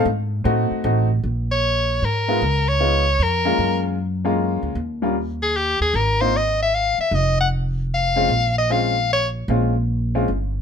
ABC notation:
X:1
M:3/4
L:1/8
Q:"Swing" 1/4=153
K:Abmix
V:1 name="Soprano saxophone"
z6 | [K:Bbm] z d3 B2- | B d3 B2- | B z4 z |
z3 A =G A | B c e =e f e | e g z2 f2- | f e f2 d z |
z6 |]
V:2 name="Upright piano"
z2 [=A,CEG]2 [A,CEG] z | [K:Bbm] z4 z [A,_CEF] | z2 [A,_CEF] z2 [A,B,DF]- | [A,B,DF]2 z [A,B,DF]3 |
z [=G,B,DF] z4 | z [B,CEF] z4 | z4 z [A,CDF] | z2 [A,CDF] z3 |
[A,CDF] z2 [A,CDF] z2 |]
V:3 name="Upright bass" clef=bass
A,,2 =A,, z =A,,,2 | [K:Bbm] B,,,4 A,,2 | D,,4 F,,2 | G,,4- G,, =D,, |
E,,4- E,, E,, | A,,,4- A,,, z | F,,,6 | B,,,6 |
B,,,4 =G,,,2 |]